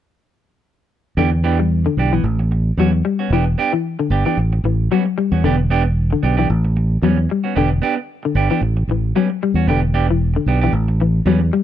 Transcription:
1.17 fingered electric bass E2, clean electric guitar D3 E3 B3 D4 G4
1.32 muted clean electric guitar stroke
1.44 clean electric guitar E3 B3 D4 G4
1.59 clean electric guitar G3, muted clean electric guitar stroke
1.86 clean electric guitar D3, muted clean electric guitar stroke
1.97 fingered electric bass B1, clean electric guitar E3 D4 G4, muted clean electric guitar stroke
2.13 clean electric guitar E3 B3, muted clean electric guitar stroke
2.24 fingered electric bass A1, muted clean electric guitar stroke
2.39 muted clean electric guitar stroke
2.51 muted clean electric guitar stroke
2.77 fingered electric bass E2, clean electric guitar F#3 G3 B3 C#4 F#4
2.93 muted clean electric guitar stroke
3.05 clean electric guitar G3, muted clean electric guitar stroke
3.19 clean electric guitar B3 C#4 F#4
3.30 fingered electric bass E1, clean electric guitar E3 B3 D4 G4
3.46 muted clean electric guitar stroke
3.58 clean electric guitar B3 D4 G4
3.73 clean electric guitar E3
3.99 clean electric guitar D3, muted clean electric guitar stroke
4.10 fingered electric bass G1, clean electric guitar B3 D4 G4
4.25 clean electric guitar E3 B3 D4 G4
4.37 fingered electric bass A1
4.53 muted clean electric guitar stroke
4.64 fingered electric bass A1, clean electric guitar E3, muted clean electric guitar stroke
4.91 clean electric guitar F#3 G3 B3 C#4 F#4
5.05 muted clean electric guitar stroke
5.18 clean electric guitar G3, muted clean electric guitar stroke
5.32 fingered electric bass E2, clean electric guitar B3 C#4 F#4
5.44 fingered electric bass E1, clean electric guitar D3 B3 D4 G4
5.57 muted clean electric guitar stroke
5.70 clean electric guitar B3 D4 G4
5.84 muted clean electric guitar stroke
6.10 clean electric guitar D3, muted clean electric guitar stroke
6.23 fingered electric bass B1, clean electric guitar B3 D4 G4
6.37 clean electric guitar E3 B3 D4 G4
6.50 fingered electric bass A1
6.65 muted clean electric guitar stroke
6.77 muted clean electric guitar stroke
7.02 fingered electric bass E2, clean electric guitar F#3 G3 B3 C#4, muted clean electric guitar stroke
7.18 muted clean electric guitar stroke
7.29 clean electric guitar G3, muted clean electric guitar stroke
7.44 clean electric guitar B3 C#4 F#4
7.56 fingered electric bass E1, clean electric guitar D3 B3 D4 G4
7.82 clean electric guitar B3 D4 G4
7.96 muted clean electric guitar stroke
8.23 clean electric guitar D3, muted clean electric guitar stroke
8.35 fingered electric bass G1, clean electric guitar B3 D4 G4
8.50 clean electric guitar E3 B3 D4 G4
8.61 fingered electric bass A1, muted clean electric guitar stroke
8.77 muted clean electric guitar stroke
8.87 fingered electric bass A1, clean electric guitar E3, muted clean electric guitar stroke
9.15 clean electric guitar F#3 G3 B3 C#4, muted clean electric guitar stroke
9.30 muted clean electric guitar stroke
9.42 clean electric guitar G3, muted clean electric guitar stroke
9.54 fingered electric bass E2, clean electric guitar C#4 F#4
9.67 fingered electric bass E1, clean electric guitar D3 B3 D4 G4
9.82 muted clean electric guitar stroke
9.94 clean electric guitar B3 D4 G4
10.08 clean electric guitar E3, muted clean electric guitar stroke
10.34 clean electric guitar D3, muted clean electric guitar stroke
10.46 fingered electric bass B1, clean electric guitar B3 D4 G4
10.61 clean electric guitar E3 B3 D4 G4
10.73 fingered electric bass A1
10.88 muted clean electric guitar stroke
11.00 clean electric guitar E3, muted clean electric guitar stroke
11.26 fingered electric bass E2, clean electric guitar F#3 G3 B3 C#4
11.41 muted clean electric guitar stroke
11.53 clean electric guitar G3, muted clean electric guitar stroke

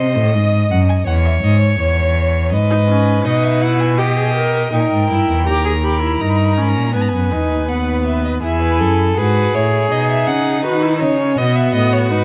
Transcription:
Already playing: cello C3, violin C5 D#5
0.16 cello A2
0.34 cello G#2, violin D#5
0.70 cello F#2, violin F#5
0.89 violin G#5
1.07 cello E2, violin C#5 F#5
1.25 violin E5
1.43 cello G#2, violin D#5
1.62 violin C#5
1.80 cello E2
2.52 cello G#2, violin B4 D#5
2.70 viola D#4
2.88 viola C#4
3.25 cello B2, viola D#4, violin B4 D#5
3.43 violin E5
3.61 viola E4, violin F#5
3.80 violin G#5
3.97 viola G4, violin G4 D#5
4.17 viola G#4
4.35 viola A#4
4.72 cello A#2, viola D#4, violin A#4 G5
4.80 violin G#5
4.86 violin G5
4.91 cello G#2
5.10 cello G2, viola E4
5.29 cello E2
5.47 cello D#2, viola G4, violin A#4 A#5
5.65 viola G#4
5.84 viola G4, violin B5
6.02 viola E4
6.20 cello G2, viola D#4, violin A#5
6.29 violin B5
6.37 violin A#5
6.45 violin B5
6.53 violin A#5
6.58 cello G#2, viola C#4, violin B5
6.69 violin A#5
6.76 cello A#2
6.94 cello G#2, viola B3, violin B4 G#5
7.02 violin A#5
7.09 violin G#5
7.14 cello F#2
7.32 cello E2, viola D#4
7.51 cello D#2
7.69 viola B3, violin F#5
8.06 violin E5
8.25 violin D#5
8.43 cello E2, viola E4, violin G#4 E5
8.62 violin B4
8.80 cello F#2, violin A4
9.17 cello G#2, violin F#4 B4, viola G#4
9.54 cello A2, violin E4 C#5
9.91 cello B2, violin D#4 D#5
10.09 violin E5
10.27 cello C#3, violin F#5
10.64 cello D#3, viola F#4, violin B4
10.82 viola E4
11.00 cello C#3, viola D#4, violin C#5
11.19 viola C#4
11.37 cello B2, viola B3, violin F#4 D#5
11.56 violin E5
11.74 cello A2, violin D#5
11.93 violin C#5
12.11 cello G#2, viola D#4, violin B4

